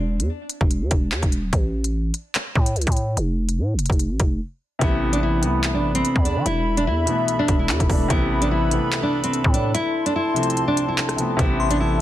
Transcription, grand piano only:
4.79 C3 E3 A3
4.83 B3
5.41 C3 E3 A3
5.45 B3
7.06 B2 E3 A3 B3
7.88 B2 E3 A3
7.92 D4
8.08 C3 E3 A3
8.12 B3
8.69 C3 E3 A3 B3
10.34 C3 F3 A3 C4
11.16 C3 F3 A3 B3
11.37 C3 E3 A3
11.41 B3

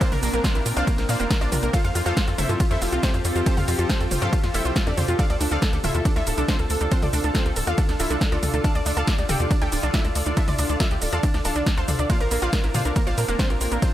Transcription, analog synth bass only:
0.12 A#1
0.23 A#1
0.33 A#1
0.55 A#1
0.66 A#2
0.77 C2
0.98 A#1
1.09 A#2
1.20 F1
1.41 A#1
1.52 A#1
1.63 A#1
1.84 F2
1.95 F2
2.06 F2
2.28 F2
2.38 F1
2.49 G2
2.71 F2
2.81 F1
2.92 C2
3.14 F2
3.25 F2
3.35 F2
3.57 F2
3.68 F2
3.79 F2
4.00 F2
4.11 F1
4.22 G2
4.43 F2
4.54 F1
4.65 C2
4.87 F2
4.97 F2
5.08 F2
5.30 D2
5.41 D2
5.51 D2
5.73 D2
5.84 D1
5.95 E2
6.16 D2
6.27 D1
6.38 C2
6.59 D2
6.70 D2
6.81 D2
7.03 D2
7.13 D2
7.24 D2
7.46 D2
7.56 D1
7.67 E2
7.89 D2
7.99 D1
8.10 C2
8.32 D2
8.43 D2
8.53 D2
8.75 D2
8.86 D2
8.97 D2
9.18 D2
9.29 D1
9.40 E2
9.62 D2
9.72 D1
9.83 C2
10.05 D2
10.15 D2
10.26 D2
10.48 D2
10.59 D2
10.69 D2
10.91 D2
11.02 D1
11.13 E2
11.34 D2
11.45 D1
11.56 C2
11.77 D2
11.88 D2
11.99 D2
12.20 A#1
12.31 A#1
12.42 A#1
12.64 A#1
12.75 A#2
12.85 C2
13.07 A#1
13.18 A#2
13.28 F1
13.50 A#1
13.61 A#1
13.72 A#1

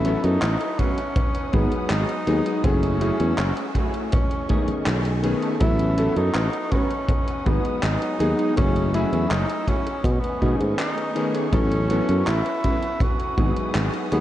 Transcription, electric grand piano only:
0.05 F#3 B3 C#4 E4 A4
0.23 F#3 B3 C#4 E4 A4
1.53 F#3 G#3 B3 D#4 G#4
2.27 F#3 G#3 B3 D#4 G#4
2.64 F#3 A3 C#4 E4 G#4
3.00 F#3 A3 C#4 E4 G#4
3.19 F#3 A3 C#4 E4 G#4
4.49 D#3 A3 B3 C#4 G#4
5.23 D#3 A3 B3 C#4 G#4
5.60 F#3 B3 C#4 E4 A4
5.97 F#3 B3 C#4 E4 A4
6.16 F#3 B3 C#4 E4 A4
7.45 F#3 G#3 B3 D#4 G#4
8.19 F#3 G#3 B3 D#4 G#4
8.56 F#3 A3 C#4 E4 G#4
8.93 F#3 A3 C#4 E4 G#4
9.12 F#3 A3 C#4 E4 G#4
10.41 D#3 A3 B3 C#4 G#4
11.15 D#3 A3 B3 C#4 G#4
11.52 F#3 B3 C#4 E4 A4
11.90 F#3 B3 C#4 E4 A4
12.08 F#3 B3 C#4 E4 A4
13.38 F#3 G#3 B3 D#4 G#4
14.12 F#3 G#3 B3 D#4 G#4

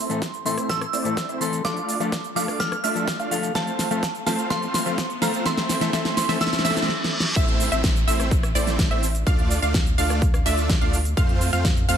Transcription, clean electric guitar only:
0.09 A2 E3 A3 C4 A4
0.45 A2 E3 A3 C4 A4
0.69 A2 E3 A3 C4 A4
1.04 A2 E3 A3 C4 A4
1.40 E3 A3 C4 A4
1.64 F3 A3 D4 A4
2.00 F3 A3 D4 A4
2.35 F3 A3 D4 A4
2.59 F3 A3 D4 A4
2.95 F3 A3 D4 A4
3.31 F3 A3 D4 A4
3.54 F3 A3 C4 A4
3.90 F3 A3 C4 A4
4.26 F3 A3 C4 A4
4.50 F3 A3 C4 A4
4.86 F3 A3 C4 A4
5.21 F3 A3 C4 A4
5.45 E3 A3 C4 A4
5.80 E3 A3 C4 A4
5.92 E3 A3 C4 A4
6.28 E3 A3 C4 A4
6.40 E3 A3 C4 A4
6.64 E3 A3 C4 A4

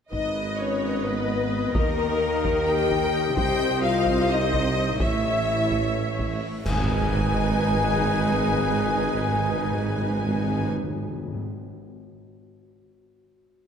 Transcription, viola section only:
0.11 B4 D#5
1.75 A#4
3.37 C5 D#5
5.00 C#5 E5
6.65 D#4 B4

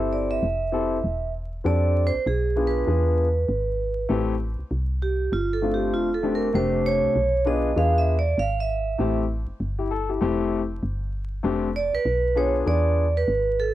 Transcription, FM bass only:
Already playing: G1
0.43 F1
1.04 E1
1.65 F2
2.14 B1
2.26 B1
2.87 E2
3.48 G#1
4.10 A1
4.59 C2
4.71 C2
5.32 G1
5.93 E1
6.54 F1
7.03 B1
7.15 B1
7.76 E2
8.38 G#1
8.99 A1
9.48 G1
9.60 G1
10.21 F1
10.83 G1
11.44 F1
11.93 B1
12.05 B1
12.66 E2
13.28 G#1

